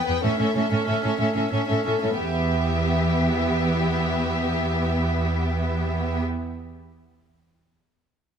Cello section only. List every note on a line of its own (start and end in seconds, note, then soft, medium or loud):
0.08 0.14 E2 soft
0.24 0.30 A2 soft
0.40 0.46 A2 soft
0.56 0.62 A2 soft
0.71 0.78 A2 soft
0.88 0.95 A2 soft
1.04 1.11 A2 soft
1.20 1.26 A2 soft
1.36 1.43 A2 soft
1.53 1.59 A2 soft
1.69 1.76 A2 soft
1.86 1.93 A2 soft
2.04 2.10 A2 soft
2.18 6.21 E2 soft